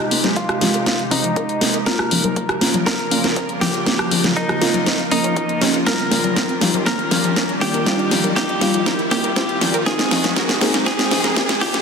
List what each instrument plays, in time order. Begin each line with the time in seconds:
Already playing: ambient pad C3 G#3 D#4 G4, synth stab G#3 F4 G4, clean electric guitar D#4, riser
0.11 analog synth bass F1, synth pluck A#3, open hi-hat, high conga
0.24 analog synth bass F1, synth pluck A#4, snare, closed hi-hat, low conga
0.36 synth pluck C4, clean electric guitar F4, kick, closed hi-hat
0.49 cross-stick, closed hi-hat
0.61 synth pluck F3, synth stab G#3 F4 G4, snare, open hi-hat
0.74 analog synth bass F1, synth pluck A#4, closed hi-hat
0.86 synth pluck A#3, kick, snare, closed hi-hat
0.99 closed hi-hat
1.11 analog synth bass G#1, synth pluck F3, clean electric guitar D#4, open hi-hat, high conga
1.24 synth pluck F3, closed hi-hat
1.36 synth pluck A#4, kick, closed hi-hat
1.49 closed hi-hat
1.61 analog synth bass F1, synth pluck A#3, snare, open hi-hat
1.74 synth pluck A#4, closed hi-hat
1.86 ambient pad C#3 F3 A#3 F4 A#4, synth stab A#3 C#4 F4, synth pluck C4, clean electric guitar A#4, kick, snare, closed hi-hat
1.99 cross-stick, closed hi-hat
2.11 analog synth bass A#1, synth pluck F3, open hi-hat, high conga
2.24 analog synth bass A#1, synth pluck A#4, closed hi-hat, low conga
2.36 synth pluck A#3, kick, closed hi-hat
2.49 cross-stick, closed hi-hat
2.61 analog synth bass A#1, synth pluck F3, synth stab A#3 C#4 F4, snare, open hi-hat
2.74 analog synth bass A#1, synth pluck F3, closed hi-hat, low conga
2.86 synth pluck A#4, clean electric guitar A#4, kick, snare, closed hi-hat
2.99 closed hi-hat
3.11 analog synth bass A#2, synth pluck A#3, open hi-hat, high conga
3.24 synth pluck A#4, snare, closed hi-hat
3.36 synth pluck C4, kick, closed hi-hat
3.49 closed hi-hat
3.61 analog synth bass A#1, synth pluck F3, clean electric guitar G4, snare, open hi-hat
3.74 synth pluck A#4, closed hi-hat
3.86 synth stab A#3 C#4 F4, synth pluck A#3, kick, snare, closed hi-hat
3.99 cross-stick, closed hi-hat
4.11 analog synth bass A#1, synth pluck F3, open hi-hat, high conga
4.24 analog synth bass A#1, synth pluck F3, snare, closed hi-hat, low conga
4.36 clean electric guitar D#4, synth pluck A#4, kick, closed hi-hat
4.49 cross-stick, closed hi-hat
4.61 synth stab A#3 C#4 F4, synth pluck A#3, snare, open hi-hat
4.74 analog synth bass A#1, synth pluck A#4, closed hi-hat, low conga
4.86 synth pluck C4, kick, snare, closed hi-hat
4.99 closed hi-hat
5.11 analog synth bass A#1, synth pluck A#3, clean electric guitar D#4, open hi-hat, high conga
5.24 synth pluck C#4, closed hi-hat
5.36 synth pluck F3, kick, closed hi-hat
5.49 closed hi-hat
5.61 analog synth bass C#2, synth stab A#3 C#4 G4, synth pluck C#4, snare, open hi-hat
5.74 synth pluck F4, closed hi-hat
5.86 ambient pad D#3 G3 A#3 G4, synth stab G3 D#4 F4, synth pluck A#4, clean electric guitar A#4, kick, snare, closed hi-hat
5.99 closed hi-hat
6.11 analog synth bass A#1, synth pluck A#3, snare, open hi-hat, high conga
6.24 analog synth bass A#1, synth pluck A#4, closed hi-hat, low conga
6.36 synth pluck C4, kick, snare, closed hi-hat
6.49 closed hi-hat
6.61 analog synth bass A#1, synth pluck F3, synth stab G3 D#4 F4, snare, open hi-hat
6.74 analog synth bass A#1, synth pluck A#4, closed hi-hat, low conga
6.86 synth pluck A#3, clean electric guitar A#4, kick, snare, closed hi-hat
6.99 closed hi-hat
7.11 analog synth bass A#2, synth pluck F3, snare, open hi-hat, high conga
7.24 synth pluck F3, closed hi-hat
7.36 synth pluck A#4, kick, snare, closed hi-hat
7.49 closed hi-hat
7.61 analog synth bass A#1, synth pluck A#3, clean electric guitar G4, snare, open hi-hat
7.74 synth pluck A#4, closed hi-hat
7.86 synth stab G3 D#4 F4, synth pluck C4, kick, snare, closed hi-hat
7.99 closed hi-hat
8.11 analog synth bass A#1, synth pluck F3, snare, open hi-hat, high conga
8.24 analog synth bass A#1, synth pluck A#4, closed hi-hat, low conga
8.36 synth pluck A#3, clean electric guitar G4, kick, snare, closed hi-hat
8.49 closed hi-hat
8.61 analog synth bass A#1, synth pluck F3, synth stab G3 D#4 F4, snare, open hi-hat
8.74 analog synth bass A#1, synth pluck F3, closed hi-hat
8.86 synth pluck A#4, kick, snare, closed hi-hat
8.99 closed hi-hat
9.11 analog synth bass C#2, synth pluck A#3, clean electric guitar G4, snare, open hi-hat, high conga
9.24 synth pluck A#4, closed hi-hat
9.36 synth pluck C4, kick, snare, closed hi-hat
9.49 closed hi-hat
9.61 analog synth bass A#1, synth pluck F3, snare, open hi-hat
9.74 synth pluck A#4, closed hi-hat
9.86 ambient pad C3 G#3 D#4 C5, synth stab G#3 C4 D#4, synth pluck A#3, clean electric guitar G#4, kick, snare, closed hi-hat
9.99 snare, closed hi-hat
10.11 synth pluck F3, snare, open hi-hat, high conga
10.24 analog synth bass G#1, synth pluck F3, snare, closed hi-hat, low conga
10.36 synth pluck A#4, kick, snare, closed hi-hat
10.49 snare, closed hi-hat
10.61 synth stab G#3 C4 D#4, synth pluck A#3, snare, open hi-hat
10.74 synth pluck A#4, snare, closed hi-hat, low conga
10.86 synth pluck C4, clean electric guitar G#4, kick, snare, closed hi-hat
10.99 snare, closed hi-hat
11.11 analog synth bass G#2, synth pluck F3, snare, open hi-hat, high conga
11.24 synth pluck A#4, snare, closed hi-hat
11.36 synth pluck A#3, kick, snare, closed hi-hat
11.49 snare, closed hi-hat
11.61 synth pluck F3, clean electric guitar G4, snare, open hi-hat
11.74 synth pluck F3, snare, closed hi-hat